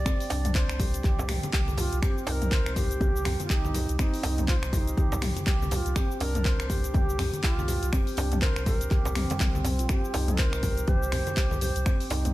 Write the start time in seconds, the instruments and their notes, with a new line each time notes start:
Already playing: bansuri D5
0.06 handpan C4, finger snap, kick, closed hi-hat, djembe tone, shaker
0.20 open hi-hat, shaker
0.30 sub bass C2, handpan D4, open hi-hat, djembe slap, shaker
0.45 closed hi-hat, mid tom, djembe tone, shaker
0.55 handpan C5, kick, clap, closed hi-hat, shaker
0.69 sub bass C2, finger snap, shaker
0.79 handpan G4, kick, open hi-hat, high conga, low conga, shaker
0.94 closed hi-hat, shaker
1.04 sub bass C2, handpan G4, kick, clap, closed hi-hat, high conga, shaker
1.19 djembe slap, low conga, shaker
1.29 handpan G4, finger snap, open hi-hat, mid tom, low conga, shaker
1.43 closed hi-hat, high conga, djembe tone, shaker
1.53 sub bass C2, handpan G4, kick, clap, closed hi-hat, mid tom, shaker
1.68 high conga, shaker
1.78 bansuri F4, handpan G4, open hi-hat, djembe slap, high conga, low conga, shaker
1.93 sub bass C2, closed hi-hat, shaker
2.02 handpan C4, bansuri G4, finger snap, kick, closed hi-hat, djembe tone, shaker
2.18 shaker
2.27 sub bass C2, handpan D#4, bansuri C5, open hi-hat, djembe slap, shaker
2.32 bansuri A#4
2.42 closed hi-hat, mid tom, djembe tone, shaker
2.52 handpan C5, kick, clap, closed hi-hat, shaker
2.66 sub bass C2, finger snap, shaker
2.76 handpan G4, bansuri G4, kick, open hi-hat, high conga, low conga, shaker
2.91 closed hi-hat, shaker
3.01 sub bass C2, handpan G4, kick, closed hi-hat, mid tom, high conga, djembe tone, shaker
3.16 shaker
3.25 handpan G4, finger snap, open hi-hat, high conga, djembe tone, low conga, shaker
3.40 closed hi-hat, high conga, shaker
3.45 bansuri F4
3.50 sub bass C2, bansuri D#4, handpan G4, kick, clap, closed hi-hat, shaker
3.65 high conga, shaker
3.74 handpan G4, open hi-hat, low conga, shaker
3.89 sub bass C2, closed hi-hat, shaker
3.99 handpan C4, bansuri D#4, finger snap, kick, closed hi-hat, djembe tone, shaker
4.14 open hi-hat, shaker
4.23 sub bass C2, handpan D#4, open hi-hat, djembe slap, shaker
4.38 closed hi-hat, mid tom, djembe tone, shaker
4.48 bansuri F4, handpan C5, kick, clap, closed hi-hat, shaker
4.63 sub bass C2, finger snap, shaker
4.73 bansuri F4, handpan G4, kick, open hi-hat, high conga, low conga, shaker
4.78 bansuri D#4
4.88 closed hi-hat, shaker
4.97 sub bass C2, handpan G4, kick, closed hi-hat, high conga, shaker
5.12 djembe slap, low conga, shaker
5.22 handpan G4, finger snap, open hi-hat, mid tom, low conga, shaker
5.36 closed hi-hat, high conga, shaker
5.47 sub bass C2, handpan G4, kick, clap, closed hi-hat, mid tom, shaker
5.62 high conga, shaker
5.71 handpan G4, bansuri G4, open hi-hat, djembe slap, high conga, low conga, shaker
5.76 bansuri F4
5.86 sub bass C2, closed hi-hat, shaker
5.96 handpan C4, bansuri G4, finger snap, kick, closed hi-hat, djembe tone, shaker
6.11 shaker
6.20 sub bass C2, handpan D4, bansuri A#4, open hi-hat, djembe slap, shaker
6.35 closed hi-hat, mid tom, djembe tone, shaker
6.45 handpan C5, kick, clap, closed hi-hat, shaker
6.60 sub bass C2, finger snap, shaker
6.70 handpan G4, bansuri G4, kick, open hi-hat, high conga, low conga, shaker
6.84 closed hi-hat, shaker
6.94 sub bass C2, handpan G4, kick, closed hi-hat, mid tom, high conga, djembe tone, shaker
7.10 shaker
7.19 handpan G4, finger snap, open hi-hat, high conga, djembe tone, low conga, shaker
7.34 closed hi-hat, high conga, shaker
7.44 sub bass C2, bansuri F4, handpan G4, kick, clap, closed hi-hat, shaker
7.59 high conga, shaker
7.68 handpan G4, open hi-hat, low conga, shaker
7.83 sub bass C2, closed hi-hat, shaker
7.93 handpan C4, bansuri G4, finger snap, kick, closed hi-hat, djembe tone, shaker
8.07 open hi-hat, shaker
8.17 sub bass C2, handpan D4, open hi-hat, djembe slap, shaker
8.32 closed hi-hat, mid tom, djembe tone, shaker
8.42 bansuri A#4, handpan C5, kick, clap, closed hi-hat, shaker
8.56 sub bass C2, finger snap, shaker
8.66 handpan G4, bansuri A#4, kick, open hi-hat, high conga, low conga, shaker
8.81 closed hi-hat, shaker
8.91 sub bass C2, handpan G4, kick, clap, closed hi-hat, high conga, shaker
9.05 djembe slap, low conga, shaker
9.15 handpan C4, finger snap, open hi-hat, mid tom, low conga, shaker
9.30 handpan G3, closed hi-hat, djembe slap, high conga, shaker
9.40 sub bass C2, handpan C4, kick, clap, closed hi-hat, mid tom, shaker
9.55 high conga, shaker
9.64 handpan C4, open hi-hat, djembe slap, high conga, low conga, shaker
9.79 sub bass A#1, handpan F4, closed hi-hat, shaker
9.89 handpan C4, bansuri G4, finger snap, kick, closed hi-hat, djembe tone, shaker
10.04 shaker
10.14 sub bass C2, handpan D#4, open hi-hat, djembe slap, shaker
10.28 closed hi-hat, mid tom, djembe tone, shaker
10.38 bansuri A#4, handpan C5, kick, clap, closed hi-hat, shaker
10.53 sub bass C2, finger snap, shaker
10.63 handpan G4, kick, open hi-hat, high conga, low conga, shaker
10.77 closed hi-hat, shaker
10.88 sub bass C2, handpan G4, bansuri C5, kick, closed hi-hat, mid tom, djembe tone, high conga, shaker
11.03 shaker
11.12 handpan G4, finger snap, open hi-hat, djembe tone, high conga, low conga, shaker
11.27 closed hi-hat, high conga, shaker
11.37 sub bass C2, handpan G4, kick, clap, closed hi-hat, shaker
11.51 high conga, shaker
11.61 handpan G4, bansuri C5, open hi-hat, low conga, shaker
11.76 sub bass C2, closed hi-hat, shaker
11.86 handpan C4, finger snap, kick, closed hi-hat, djembe tone, shaker
12.00 open hi-hat, shaker
12.10 sub bass C2, handpan D#4, open hi-hat, djembe slap, shaker
12.25 closed hi-hat, mid tom, djembe tone, shaker